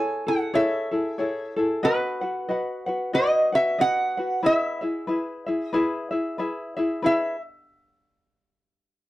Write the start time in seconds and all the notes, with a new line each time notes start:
Already playing: E4 G#4 A4 C#5 G#5
0.27 E4 G#4 A4 F#5
0.54 E4 G#4 A4 C#5 E5
0.91 E4 G#4 A4
1.18 E4 G#4 A4 C#5
1.56 E4 G#4 A4
1.83 F#4 B4 D#5 F#5
2.21 F#4 B4 F#5
2.49 F#4 B4 D#5 F#5
2.86 F#4 B4 F#5
3.13 F#4 B4 D#5 F#5
3.52 F#4 B4 E5 F#5
3.79 F#4 B4 D#5 F#5
4.17 F#4 B4 F#5
4.43 E4 G#4 B4 E5
4.81 E4 G#4 E5
5.07 E4 G#4 B4 E5
5.46 E4 G#4 E5
5.67 D#5
5.73 E4 G#4 B4 E5
6.11 E4 G#4 E5
6.38 E4 G#4 B4 E5
6.77 E4 G#4 E5
7.02 E4 G#4 B4 E5